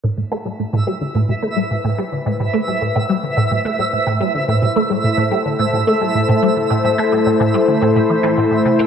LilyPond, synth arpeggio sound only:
\new Staff \with { instrumentName = "Synth arpeggio sound" } { \clef bass \time 4/4 \key a \minor \tempo 4 = 108 a,16 a,16 a16 g16 a,16 a,16 g16 d16 a,16 a,16 a16 g16 a,16 a,16 g16 d16 | a,16 a,16 a16 g16 a,16 a,16 g16 d16 a,16 a,16 a16 g16 a,16 a,16 g16 d16 | a,16 a,16 a16 g16 a,16 a,16 g16 d16 a,16 a,16 a16 g16 a,16 a,16 g16 d16 | a,16 a,16 a16 g16 a,16 a,16 g16 d16 a,16 a,16 e16 e16 a,16 a,16 c16 a16 | }